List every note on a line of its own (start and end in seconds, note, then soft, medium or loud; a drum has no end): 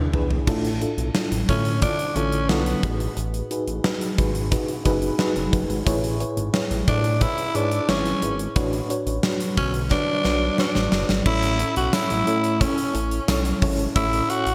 0.00 0.13 D4 loud
0.00 0.14 E4 medium
0.00 0.14 G#4 medium
0.00 0.15 B4 loud
0.13 0.39 E2 medium
0.13 0.44 D4 medium
0.13 0.44 E4 medium
0.13 0.44 G#4 medium
0.13 0.45 B4 medium
0.13 floor tom medium
0.30 floor tom medium
0.47 0.85 A1 loud
0.47 1.45 A2 medium
0.47 0.78 D4 loud
0.47 0.78 E4 medium
0.47 0.78 F4 medium
0.47 0.78 A4 loud
0.47 kick loud
0.47 crash medium
0.65 closed hi-hat medium
0.81 1.11 D4 medium
0.81 1.12 E4 medium
0.81 1.12 F4 medium
0.81 1.12 A4 medium
0.81 closed hi-hat medium
0.98 1.10 B1 medium
0.98 closed hi-hat medium
1.14 1.45 D4 medium
1.14 1.45 E4 medium
1.14 1.45 F4 medium
1.14 1.46 A4 medium
1.14 snare loud
1.31 1.44 A1 medium
1.31 closed hi-hat medium
1.49 1.87 A2 loud
1.49 1.79 D3 medium
1.49 1.80 C#4 medium
1.49 1.79 E4 medium
1.49 1.79 F4 medium
1.49 1.80 A4 medium
1.49 kick medium
1.49 closed hi-hat medium
1.65 closed hi-hat soft
1.82 2.13 D4 medium
1.82 2.17 D4 loud
1.82 2.13 E4 medium
1.82 2.13 F4 medium
1.82 2.13 A4 medium
1.82 kick medium
1.82 closed hi-hat medium
1.99 closed hi-hat soft
2.16 2.51 A1 medium
2.16 2.46 D3 medium
2.16 2.51 C#4 medium
2.16 2.46 E4 medium
2.16 2.47 F4 medium
2.16 2.47 A4 loud
2.16 closed hi-hat medium
2.32 closed hi-hat soft
2.49 2.75 B1 medium
2.49 3.00 B3 medium
2.49 2.80 D4 medium
2.49 2.80 E4 medium
2.49 2.80 F4 medium
2.49 2.81 A4 loud
2.49 snare loud
2.66 closed hi-hat soft
2.83 3.09 A1 medium
2.83 3.81 A2 medium
2.83 3.44 D#4 medium
2.83 3.44 F#4 medium
2.83 3.44 G#4 medium
2.83 3.45 B4 medium
2.83 kick loud
2.83 closed hi-hat medium
3.00 closed hi-hat soft
3.17 3.42 A1 loud
3.17 closed hi-hat medium
3.34 closed hi-hat medium
3.51 3.81 D#4 medium
3.51 3.81 F#4 medium
3.51 3.81 G#4 medium
3.51 3.82 B4 medium
3.51 closed hi-hat medium
3.67 3.80 A1 medium
3.67 closed hi-hat medium
3.84 4.15 D#4 medium
3.84 4.15 F#4 medium
3.84 4.15 G#4 medium
3.84 4.15 B4 medium
3.84 snare loud
4.01 closed hi-hat medium
4.18 4.56 G#1 medium
4.18 4.48 D#4 medium
4.18 4.48 F#4 medium
4.18 4.49 G#4 medium
4.18 4.49 B4 medium
4.18 kick medium
4.18 closed hi-hat medium
4.35 closed hi-hat soft
4.52 4.82 D#4 medium
4.52 4.82 F#4 medium
4.52 4.83 G#4 medium
4.52 4.83 B4 medium
4.52 kick medium
4.52 closed hi-hat medium
4.68 closed hi-hat soft
4.85 5.11 F#1 medium
4.85 5.16 D#4 loud
4.85 5.16 F#4 loud
4.85 5.16 G#4 loud
4.85 5.16 B4 loud
4.85 kick medium
4.85 closed hi-hat medium
5.02 closed hi-hat soft
5.18 5.49 D#4 loud
5.18 5.49 F#4 loud
5.18 5.50 G#4 loud
5.18 5.50 B4 loud
5.18 snare loud
5.36 5.49 F#1 medium
5.36 closed hi-hat soft
5.52 5.66 F#1 medium
5.52 5.83 D#4 medium
5.52 5.83 F#4 medium
5.52 5.83 G#4 medium
5.52 5.84 B4 medium
5.52 kick medium
5.52 closed hi-hat medium
5.70 5.82 G#1 medium
5.70 closed hi-hat soft
5.86 6.25 A1 medium
5.86 6.84 A2 medium
5.86 6.17 E4 loud
5.86 6.17 G#4 loud
5.86 6.17 B4 loud
5.86 6.17 C#5 loud
5.86 kick loud
5.86 closed hi-hat medium
6.04 closed hi-hat medium
6.20 6.51 E4 medium
6.20 6.51 G#4 medium
6.20 6.51 B4 medium
6.20 6.51 C#5 loud
6.20 closed hi-hat medium
6.37 6.50 G#1 medium
6.37 closed hi-hat medium
6.53 6.84 E4 medium
6.53 6.84 G#4 medium
6.53 6.84 B4 medium
6.53 6.85 C#5 medium
6.53 snare loud
6.71 6.84 A1 loud
6.71 closed hi-hat medium
6.88 7.26 A2 loud
6.88 7.23 D4 medium
6.88 7.18 E4 medium
6.88 7.18 G#4 medium
6.88 7.18 B4 medium
6.88 7.19 C#5 medium
6.88 kick medium
6.88 closed hi-hat medium
7.04 closed hi-hat soft
7.21 7.52 E4 medium
7.21 7.57 E4 loud
7.21 7.52 G#4 medium
7.21 7.52 B4 medium
7.21 7.52 C#5 medium
7.21 kick medium
7.21 closed hi-hat medium
7.38 closed hi-hat soft
7.55 7.80 G#2 medium
7.55 7.91 D4 medium
7.55 7.85 E4 medium
7.55 7.85 G#4 medium
7.55 7.86 B4 medium
7.55 7.86 C#5 loud
7.55 closed hi-hat medium
7.71 closed hi-hat soft
7.88 8.14 G#1 medium
7.88 8.40 C#4 medium
7.88 8.19 E4 medium
7.88 8.19 G#4 medium
7.88 8.20 B4 medium
7.88 8.20 C#5 loud
7.88 snare loud
8.05 closed hi-hat soft
8.22 8.48 G#1 loud
8.22 8.53 E4 medium
8.22 8.53 G#4 medium
8.22 8.53 B4 medium
8.22 8.53 C#5 medium
8.22 closed hi-hat medium
8.39 closed hi-hat medium
8.56 8.82 A1 loud
8.56 9.54 A2 medium
8.56 8.87 D4 loud
8.56 8.87 F#4 loud
8.56 8.87 B4 loud
8.56 8.87 C#5 loud
8.56 kick loud
8.56 closed hi-hat medium
8.73 closed hi-hat medium
8.89 9.20 D4 medium
8.89 9.20 F#4 medium
8.89 9.21 B4 medium
8.89 9.21 C#5 medium
8.89 closed hi-hat medium
9.07 9.19 A1 medium
9.07 closed hi-hat medium
9.23 9.54 D4 medium
9.23 9.54 F#4 medium
9.23 9.54 B4 medium
9.23 9.54 C#5 medium
9.23 snare loud
9.40 closed hi-hat medium
9.57 9.96 B1 medium
9.57 9.88 D3 medium
9.57 9.73 C#4 medium
9.57 9.88 F#4 medium
9.57 9.88 B4 medium
9.57 9.88 C#5 medium
9.57 kick medium
9.57 closed hi-hat medium
9.74 closed hi-hat soft
9.91 10.21 D4 medium
9.91 10.55 D4 loud
9.91 10.22 F#4 medium
9.91 10.22 B4 medium
9.91 10.22 C#5 medium
9.91 kick medium
9.91 snare medium
10.24 10.50 B1 medium
10.24 10.55 D4 medium
10.24 10.55 F#4 medium
10.24 10.55 B4 medium
10.24 10.56 C#5 loud
10.24 snare medium
10.58 10.89 D4 medium
10.58 11.06 D4 medium
10.58 10.89 F#4 medium
10.58 10.89 B4 medium
10.58 10.89 C#5 loud
10.58 snare medium
10.75 10.88 A1 medium
10.75 snare medium
10.92 11.05 F#1 medium
10.92 11.22 D4 medium
10.92 11.23 F#4 medium
10.92 11.23 B4 medium
10.92 11.23 C#5 medium
10.92 snare loud
11.09 11.22 G#1 medium
11.09 snare medium
11.26 11.64 A1 loud
11.26 12.23 A2 medium
11.26 11.56 C#4 medium
11.26 11.56 E4 medium
11.26 11.73 E4 loud
11.26 11.57 A4 medium
11.26 11.57 C#5 loud
11.26 kick loud
11.26 crash loud
11.43 closed hi-hat medium
11.59 11.90 C#4 medium
11.59 11.90 E4 medium
11.59 11.90 A4 medium
11.59 11.91 C#5 medium
11.59 closed hi-hat medium
11.76 11.89 B1 medium
11.76 11.95 F#4 medium
11.76 closed hi-hat medium
11.93 12.24 C#4 medium
11.93 12.24 E4 medium
11.93 12.63 E4 loud
11.93 12.24 A4 medium
11.93 12.24 C#5 medium
11.93 snare loud
11.93 tambourine medium
12.10 12.23 A1 loud
12.10 closed hi-hat medium
12.26 12.65 A2 medium
12.26 12.57 C#4 medium
12.26 12.57 E4 medium
12.26 12.58 A4 medium
12.26 12.58 C#5 medium
12.26 closed hi-hat medium
12.44 closed hi-hat soft
12.60 12.91 C#4 medium
12.60 13.62 C#4 medium
12.60 12.91 E4 medium
12.60 12.91 A4 medium
12.60 12.92 C#5 loud
12.60 kick medium
12.60 closed hi-hat medium
12.78 closed hi-hat medium
12.94 13.20 A1 medium
12.94 13.25 C#4 medium
12.94 13.25 E4 medium
12.94 13.25 A4 medium
12.94 13.25 C#5 medium
12.94 closed hi-hat medium
13.11 closed hi-hat soft
13.28 13.54 B1 medium
13.28 13.58 C#4 medium
13.28 13.59 E4 medium
13.28 13.59 A4 medium
13.28 13.59 C#5 medium
13.28 snare loud
13.28 tambourine medium
13.45 closed hi-hat medium
13.62 13.87 G#1 medium
13.62 13.92 C#4 medium
13.62 13.93 E4 medium
13.62 13.93 A4 medium
13.62 13.93 C#5 loud
13.62 kick medium
13.62 open hi-hat medium
13.79 closed hi-hat soft
13.95 14.21 A1 loud
13.95 14.55 A2 medium
13.95 14.26 C#4 medium
13.95 14.26 E4 medium
13.95 14.31 E4 loud
13.95 14.26 A4 medium
13.95 14.27 C#5 loud
13.95 kick loud
13.95 closed hi-hat medium
14.13 closed hi-hat medium
14.29 14.55 C#4 medium
14.29 14.55 E4 medium
14.29 14.55 F#4 loud
14.29 14.55 A4 medium
14.29 14.55 C#5 medium
14.29 closed hi-hat medium
14.46 14.55 A1 medium
14.46 closed hi-hat medium